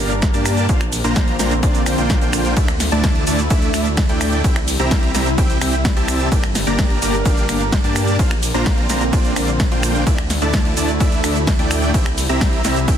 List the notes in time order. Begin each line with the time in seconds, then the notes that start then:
Already playing: G3 D4 A#4
0.00 G1 A#3 D4 G4 D5 F5
0.10 closed hi-hat, cabasa
0.22 kick, snare, closed hi-hat, cabasa
0.34 G2 A#3 D4 G4 D5 A5, closed hi-hat, cabasa
0.46 finger snap, open hi-hat, cabasa
0.57 closed hi-hat, cabasa
0.69 A#1 D3 A#3 C4 D4 F4 C5 F5, kick, closed hi-hat, cabasa
0.81 finger snap, closed hi-hat, cabasa
0.92 open hi-hat, cabasa
1.04 A#1 A#3 D4 F4 C5 A#5, closed hi-hat, cabasa
1.16 kick, snare, closed hi-hat, cabasa
1.28 closed hi-hat
1.39 A#1 A#3 D4 F4 C5 A#5, snare, open hi-hat, cabasa
1.51 closed hi-hat, cabasa
1.63 A#1 A#3 D4 F4 C5 D5, kick, closed hi-hat, cabasa
1.75 closed hi-hat, cabasa
1.86 A#1 A#3 D4 F4 C5 G5, finger snap, open hi-hat, cabasa
1.98 A#1 A#3 D4 F4 C5 G5, closed hi-hat, cabasa
2.10 kick, snare, closed hi-hat, cabasa
2.22 A#1 A#3 D4 F4 C5 G5, closed hi-hat, cabasa
2.33 finger snap, open hi-hat, cabasa
2.45 closed hi-hat, cabasa
2.57 D2 A3 D4 E4 D5 E5, kick, closed hi-hat, ride, cabasa
2.68 finger snap, closed hi-hat, cabasa
2.80 snare, open hi-hat, cabasa
2.92 D2 A3 D4 E4 D5 A5, closed hi-hat, cabasa
3.04 kick, snare, closed hi-hat, ride, cabasa
3.15 closed hi-hat
3.27 D2 A3 D4 E4 D5 A5, open hi-hat, cabasa
3.39 closed hi-hat, cabasa
3.50 D2 A3 D4 E4 D5 E5, kick, closed hi-hat, ride, cabasa
3.62 closed hi-hat, cabasa
3.74 D2 A3 D4 E4 D5 E5, finger snap, open hi-hat, cabasa
3.86 closed hi-hat, cabasa
3.97 kick, snare, closed hi-hat, ride, cabasa
4.09 D2 A3 D4 E4 D5 G5, closed hi-hat, cabasa
4.21 finger snap, open hi-hat, cabasa
4.33 closed hi-hat, cabasa
4.44 C2 C3 G3 C4 E4 G4 E5 G5, kick, closed hi-hat, ride, cabasa
4.56 finger snap, closed hi-hat, cabasa
4.68 open hi-hat, cabasa
4.79 C2 C4 E4 G4 E5 A#5, closed hi-hat, cabasa
4.91 kick, snare, closed hi-hat, ride, cabasa
5.03 closed hi-hat
5.14 C2 C4 E4 G4 E5 A#5, snare, open hi-hat, cabasa
5.26 closed hi-hat, cabasa
5.38 C2 C4 E4 G4 E5 G5, kick, closed hi-hat, ride, cabasa
5.50 closed hi-hat, cabasa
5.61 C2 C4 E4 G4 E5 G5, finger snap, open hi-hat, cabasa
5.73 closed hi-hat, cabasa
5.85 kick, snare, closed hi-hat, ride, cabasa
5.97 C2 C4 E4 G4 E5 A5, closed hi-hat, cabasa
6.08 finger snap, open hi-hat, cabasa
6.20 closed hi-hat, cabasa
6.32 G1 A#3 D4 G4 A#4 D5 G5, kick, closed hi-hat, ride, cabasa
6.44 finger snap, closed hi-hat, cabasa
6.55 snare, open hi-hat, cabasa
6.67 G1 A#3 D4 G4 D5 A#5, closed hi-hat, cabasa
6.79 kick, snare, closed hi-hat, ride, cabasa
6.90 closed hi-hat
7.02 G1 A#3 D4 G4 D5 A#5, open hi-hat, cabasa
7.14 closed hi-hat, cabasa
7.25 G1 A#3 D4 G4 D5 F5, kick, closed hi-hat, ride, cabasa
7.37 closed hi-hat, cabasa
7.49 G1 A#3 D4 G4 D5 F5, finger snap, open hi-hat, cabasa
7.61 closed hi-hat, cabasa
7.72 kick, snare, closed hi-hat, ride, cabasa
7.84 G2 A#3 D4 G4 D5 A5, closed hi-hat, cabasa
7.96 finger snap, open hi-hat, cabasa
8.08 closed hi-hat, cabasa
8.19 A#1 D3 A#3 C4 D4 F4 C5 F5, kick, closed hi-hat, ride, cabasa
8.31 finger snap, closed hi-hat, cabasa
8.43 open hi-hat, cabasa
8.54 A#1 A#3 D4 F4 C5 A#5, closed hi-hat, cabasa
8.66 kick, snare, closed hi-hat, ride, cabasa
8.78 closed hi-hat
8.89 A#1 A#3 D4 F4 C5 A#5, snare, open hi-hat, cabasa
9.01 closed hi-hat, cabasa
9.13 A#1 A#3 D4 F4 C5 D5, kick, closed hi-hat, ride, cabasa
9.25 closed hi-hat, cabasa
9.36 A#1 A#3 D4 F4 C5 D5, finger snap, open hi-hat, cabasa
9.48 closed hi-hat, cabasa
9.60 kick, snare, closed hi-hat, ride, cabasa
9.71 A#1 A#3 D4 F4 C5 G5, closed hi-hat, cabasa
9.83 finger snap, open hi-hat, cabasa
9.95 closed hi-hat, cabasa
10.07 D2 A3 D4 E4 D5 E5, kick, closed hi-hat, ride, cabasa
10.18 finger snap, closed hi-hat, cabasa
10.30 snare, open hi-hat, cabasa
10.42 D2 A3 D4 E4 D5 A5, closed hi-hat, cabasa
10.54 kick, snare, closed hi-hat, ride, cabasa
10.65 closed hi-hat
10.77 D2 A3 D4 E4 D5 A5, open hi-hat, cabasa
10.89 closed hi-hat, cabasa
11.00 D2 A3 D4 E4 D5 E5, kick, closed hi-hat, ride, cabasa
11.12 closed hi-hat, cabasa
11.24 D2 A3 D4 E4 D5 E5, finger snap, open hi-hat, cabasa
11.36 closed hi-hat, cabasa
11.47 kick, snare, closed hi-hat, ride, cabasa
11.59 D2 A3 D4 E4 D5 G5, closed hi-hat, cabasa
11.71 finger snap, open hi-hat, cabasa
11.82 closed hi-hat, cabasa
11.94 C2 C3 G3 C4 E4 G4 E5 G5, kick, closed hi-hat, ride, cabasa
12.06 finger snap, closed hi-hat, cabasa
12.18 open hi-hat, cabasa
12.29 C2 C4 E4 G4 E5 A#5, closed hi-hat, cabasa
12.41 kick, snare, closed hi-hat, ride, cabasa
12.53 closed hi-hat
12.64 C2 C4 E4 G4 E5 A#5, snare, open hi-hat, cabasa
12.76 closed hi-hat, cabasa
12.88 C2 C4 E4 G4 E5 G5, kick, closed hi-hat, ride, cabasa